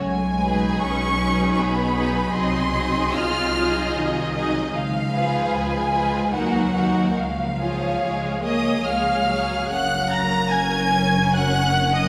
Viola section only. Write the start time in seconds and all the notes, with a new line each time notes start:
0.41 F#3 D#4
1.22 F#3 D#4
1.96 F#3 D#4
2.34 F#3 D#4
2.74 F#3 D#4
3.57 F#3 D#4
4.37 F#3 D#4
5.14 F3 F4
5.93 F3 F4
6.35 A#3 D#4
6.77 A#3 D#4
7.62 F3 F4
8.03 G#3
8.44 A#3
8.85 G#3
9.28 F#3
9.69 C#4 A#4